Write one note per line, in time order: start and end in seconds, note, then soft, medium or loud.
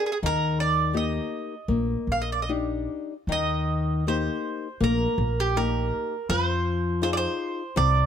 0.06 0.11 G#4 medium
0.12 0.17 G#4 medium
0.23 1.18 D#2 medium
0.23 0.92 D#3 medium
0.23 0.60 A#4 medium
0.60 0.96 D5 medium
0.93 1.54 A#3 soft
0.93 1.54 D#4 soft
0.93 1.54 G4 soft
0.93 2.07 D#5 medium
1.68 1.94 A#1 medium
1.68 2.46 A#3 medium
2.07 2.86 A#1 medium
2.12 2.20 F5 medium
2.22 2.30 D#5 medium
2.32 2.40 D5 medium
2.42 2.50 D#5 medium
2.49 3.12 D4 soft
2.49 3.13 D#4 soft
2.49 3.13 G4 soft
3.27 4.27 D#2 medium
3.27 4.03 D#3 medium
3.32 4.08 D#5 medium
4.07 4.67 A#3 soft
4.07 4.67 D#4 soft
4.07 4.67 G4 soft
4.07 4.83 C5 medium
4.80 5.05 A#1 medium
4.80 5.53 A#3 medium
4.80 5.40 A#4 medium
5.18 5.90 A#1 medium
5.40 5.58 G4 medium
5.56 6.14 A#3 medium
5.56 6.15 D#4 soft
5.56 6.15 G4 medium
5.56 6.29 A#4 medium
6.29 7.25 F2 medium
6.29 7.00 F3 medium
6.29 7.02 C5 loud
7.02 7.61 D#4 soft
7.02 7.62 F4 soft
7.02 7.62 G#4 medium
7.02 7.10 C5 medium
7.13 7.17 D5 medium
7.17 7.77 C5 medium
7.76 8.00 C2 loud
7.76 8.06 C3 medium
7.76 8.06 D5 loud